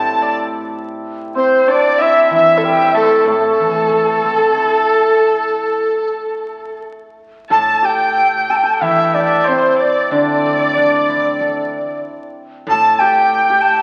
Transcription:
Already playing: guzheng A2, hammered dulcimer C4 D4 E4 G4 A4, erhu A5, dizi A5
0.22 erhu D5
1.35 hammered dulcimer C4, erhu C5, dizi C5
1.67 hammered dulcimer D4, erhu D5, dizi D5
1.98 hammered dulcimer E4, erhu E5, dizi E5
2.30 guzheng E3, hammered dulcimer E4, erhu E5
2.34 dizi E5
2.58 dizi A4
2.62 hammered dulcimer G3, dizi G5
2.94 hammered dulcimer A3, erhu A4, dizi A4
3.03 erhu C5
3.10 erhu A4
3.25 guzheng A2, hammered dulcimer A3, erhu A4, dizi A4
3.60 guzheng E3
3.92 guzheng A3
4.24 guzheng C4
4.57 guzheng E4
7.49 guzheng A2, hammered dulcimer A4, erhu A5, dizi A5
7.82 hammered dulcimer G4, erhu G5, dizi G5
8.33 erhu G5
8.50 hammered dulcimer A4, dizi A5
8.56 dizi G5
8.63 hammered dulcimer A4, dizi A5
8.74 dizi G5
8.81 guzheng E3, hammered dulcimer E4, dizi E5, erhu E5
8.91 erhu G5
8.98 erhu E5
9.05 erhu G5
9.12 hammered dulcimer D4, dizi D5, erhu E5
9.20 erhu G5
9.27 erhu E5
9.44 hammered dulcimer C4, erhu C5
9.48 dizi C5
9.77 erhu D5
9.81 dizi D5
10.08 guzheng D3, erhu D5
10.13 hammered dulcimer D4, dizi D5
10.46 guzheng A3
10.77 guzheng D4
11.09 guzheng E4
11.41 guzheng A4
12.67 guzheng A2, erhu A5, dizi A5
12.71 hammered dulcimer A4
12.93 erhu A5
12.99 hammered dulcimer G4, dizi G5, erhu G5
13.50 hammered dulcimer G4
13.61 dizi A5

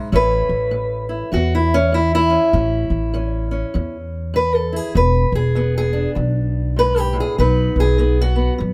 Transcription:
Already playing: steel-string acoustic guitar G#2
0.12 upright bass A1, steel-string acoustic guitar A2 A3 C#4 E4 B4
0.49 upright bass A1
0.71 steel-string acoustic guitar A2
1.09 steel-string acoustic guitar E4
1.32 upright bass E2, steel-string acoustic guitar A2 F#4
1.55 steel-string acoustic guitar E4
1.74 steel-string acoustic guitar C#4
1.92 steel-string acoustic guitar A2 E4
2.15 steel-string acoustic guitar E4
2.30 steel-string acoustic guitar C#4
2.53 upright bass A1, steel-string acoustic guitar A2 C#4
2.90 upright bass A1
3.14 steel-string acoustic guitar A2 C#4
3.51 steel-string acoustic guitar C#4
3.74 upright bass E2, steel-string acoustic guitar A2
4.34 steel-string acoustic guitar A2 B4
4.55 steel-string acoustic guitar A4
4.73 steel-string acoustic guitar E4 G#4
4.95 upright bass E1, steel-string acoustic guitar E2 B4
5.32 upright bass E1, steel-string acoustic guitar G#4
5.55 steel-string acoustic guitar E2 B3
5.78 steel-string acoustic guitar G#4
5.93 steel-string acoustic guitar D4
6.15 upright bass B1, steel-string acoustic guitar E2
6.76 steel-string acoustic guitar G#2 B4
6.99 steel-string acoustic guitar G4
7.13 steel-string acoustic guitar A2
7.20 steel-string acoustic guitar G#4
7.38 upright bass B1, steel-string acoustic guitar B2 F#3 B3 D#4 B4
7.76 upright bass B1
7.80 steel-string acoustic guitar G#4
7.98 steel-string acoustic guitar B2 B3
8.21 steel-string acoustic guitar F#4
8.36 steel-string acoustic guitar B3
8.58 upright bass F#2, steel-string acoustic guitar B2

